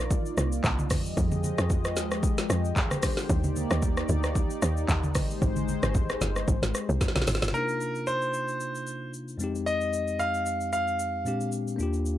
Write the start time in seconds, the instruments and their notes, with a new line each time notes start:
Already playing: log drum bass A#1, analog synth pad A#3 D#4 F4 D5
0.11 kick, shaker
0.26 shaker
0.37 log drum bass C2, cross-stick, shaker
0.52 shaker
0.64 log drum bass C2, kick, clap, low conga, shaker
0.79 high conga, shaker
0.90 log drum bass F2, analog synth pad F3 G#3 G4 D#5, kick, cross-stick, open hi-hat, high conga, shaker
1.06 shaker
1.17 log drum bass F2, kick, shaker
1.32 high conga, shaker
1.44 high conga, shaker
1.58 log drum bass F2, cross-stick, shaker
1.70 kick, shaker
1.85 cross-stick, shaker
1.96 log drum bass D#2, snare, shaker
2.11 cross-stick, shaker
2.23 kick, shaker
2.38 snare, shaker
2.50 log drum bass F2, cross-stick, shaker
2.65 shaker
2.76 analog synth pad D3 C5, kick, clap, low conga, shaker
2.91 cross-stick, high conga, shaker
3.03 kick, cross-stick, open hi-hat, high conga, shaker
3.17 snare, shaker
3.29 log drum bass D#2, analog synth pad A#3 D#4 D5, kick, shaker
3.44 high conga, shaker
3.56 high conga, shaker
3.71 log drum bass D#2, cross-stick, shaker
3.82 kick, shaker
3.97 cross-stick, shaker
4.09 log drum bass D2, low conga, shaker
4.23 cross-stick, shaker
4.35 kick, shaker
4.50 shaker
4.62 log drum bass D#2, cross-stick, shaker
4.77 shaker
4.88 log drum bass D#2, kick, clap, low conga, shaker
5.03 high conga, shaker
5.15 log drum bass G#1, analog synth pad G#3 C5, kick, cross-stick, open hi-hat, high conga, shaker
5.30 shaker
5.42 log drum bass G#1, kick, shaker
5.56 high conga, shaker
5.68 high conga, shaker
5.83 log drum bass G#1, cross-stick, high conga, shaker
5.95 kick, low conga, shaker
6.09 cross-stick, shaker
6.21 log drum bass G1, snare, low conga, shaker
6.36 cross-stick, shaker
6.48 log drum bass G#1, kick, shaker
6.63 log drum bass G#1, snare, shaker
6.75 cross-stick, shaker
6.89 log drum bass C2, shaker
7.01 kick, snare, low conga, shaker
7.08 snare
7.16 log drum bass A#1, snare, high conga, shaker
7.22 snare
7.27 log drum bass G#1, snare, open hi-hat, high conga, shaker
7.35 snare
7.42 log drum bass G1, snare, shaker
7.48 tine electric piano C3, snare
7.53 tine electric piano A#3 D4 D#4, grand piano A#4, shaker
7.58 tine electric piano E4
7.64 tine electric piano F4
7.69 shaker
7.81 shaker
7.95 shaker
8.07 grand piano C5, shaker
8.22 shaker
8.34 shaker
8.48 shaker
8.60 shaker
8.75 shaker
8.87 shaker
9.14 shaker
9.28 shaker
9.37 tine electric piano F2 G#3 C4, shaker
9.42 tine electric piano D#4 G4
9.55 shaker
9.66 grand piano D#5, shaker
9.81 shaker
9.93 shaker
10.08 shaker
10.19 grand piano F5, shaker
10.34 shaker
10.46 shaker
10.61 shaker
10.73 grand piano F5, shaker
10.88 shaker
10.99 shaker
11.25 tine electric piano A#2 G#3 C4 D4 G4, shaker
11.41 shaker
11.52 shaker
11.68 shaker
11.76 sub bass D#2, tine electric piano A#3 D4, shaker
11.81 tine electric piano F4 G4
11.93 shaker
12.06 shaker